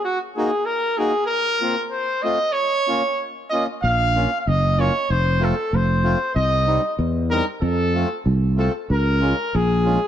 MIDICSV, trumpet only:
0, 0, Header, 1, 2, 480
1, 0, Start_track
1, 0, Key_signature, -5, "minor"
1, 0, Tempo, 623053
1, 42, Time_signature, 2, 2, 24, 8
1, 1482, Tempo, 634921
1, 7644, End_track
2, 0, Start_track
2, 0, Title_t, "Trumpet"
2, 0, Program_c, 0, 56
2, 34, Note_on_c, 0, 66, 89
2, 144, Note_off_c, 0, 66, 0
2, 278, Note_on_c, 0, 68, 80
2, 506, Note_on_c, 0, 70, 92
2, 518, Note_off_c, 0, 68, 0
2, 752, Note_on_c, 0, 68, 90
2, 764, Note_off_c, 0, 70, 0
2, 967, Note_off_c, 0, 68, 0
2, 972, Note_on_c, 0, 70, 115
2, 1437, Note_off_c, 0, 70, 0
2, 1474, Note_on_c, 0, 72, 87
2, 1708, Note_on_c, 0, 75, 99
2, 1720, Note_off_c, 0, 72, 0
2, 1937, Note_on_c, 0, 73, 104
2, 1948, Note_off_c, 0, 75, 0
2, 2471, Note_off_c, 0, 73, 0
2, 2669, Note_on_c, 0, 75, 83
2, 2782, Note_off_c, 0, 75, 0
2, 2923, Note_on_c, 0, 77, 110
2, 3325, Note_off_c, 0, 77, 0
2, 3360, Note_on_c, 0, 77, 68
2, 3410, Note_on_c, 0, 75, 94
2, 3421, Note_off_c, 0, 77, 0
2, 3655, Note_on_c, 0, 73, 93
2, 3666, Note_off_c, 0, 75, 0
2, 3889, Note_on_c, 0, 72, 103
2, 3901, Note_off_c, 0, 73, 0
2, 4139, Note_on_c, 0, 69, 85
2, 4150, Note_off_c, 0, 72, 0
2, 4376, Note_on_c, 0, 72, 88
2, 4387, Note_off_c, 0, 69, 0
2, 4824, Note_off_c, 0, 72, 0
2, 4829, Note_on_c, 0, 75, 95
2, 5278, Note_off_c, 0, 75, 0
2, 5548, Note_on_c, 0, 70, 98
2, 5656, Note_off_c, 0, 70, 0
2, 5788, Note_on_c, 0, 69, 95
2, 6241, Note_off_c, 0, 69, 0
2, 6523, Note_on_c, 0, 69, 71
2, 6631, Note_off_c, 0, 69, 0
2, 6770, Note_on_c, 0, 70, 93
2, 7250, Note_on_c, 0, 68, 77
2, 7262, Note_off_c, 0, 70, 0
2, 7644, Note_off_c, 0, 68, 0
2, 7644, End_track
0, 0, End_of_file